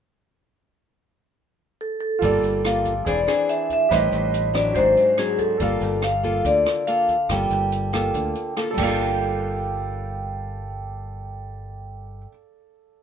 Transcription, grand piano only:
2.19 3.03 F4 medium
2.19 3.04 A4 medium
2.25 3.06 D5 medium
3.05 3.88 G#4 soft
3.05 3.89 C5 soft
3.09 3.90 D5 medium
3.89 4.73 G4 soft
3.89 4.73 B4 soft
3.89 4.73 C5 soft
3.95 4.76 D#5 medium
4.73 5.57 F#4 soft
4.73 5.58 C5 soft
4.77 5.60 D#4 medium
4.77 5.59 D5 soft
5.57 8.69 A4 soft
5.57 8.74 D5 soft
5.63 8.75 F5 medium
8.71 12.18 A4 medium
8.79 12.26 D5 medium
8.83 12.31 F5 medium

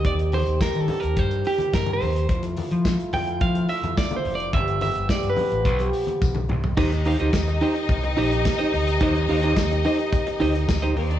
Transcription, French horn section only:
0.00 2.25 D#3 medium
0.00 2.25 C4 medium
0.00 2.25 G4 medium
2.29 4.51 A3 medium
2.29 4.51 E4 medium
2.29 4.51 F4 medium
4.53 6.59 F3 medium
4.53 6.59 B3 medium
4.53 6.59 G4 medium
6.76 11.19 D#3 medium
6.76 11.19 C4 medium
6.76 11.19 G4 medium

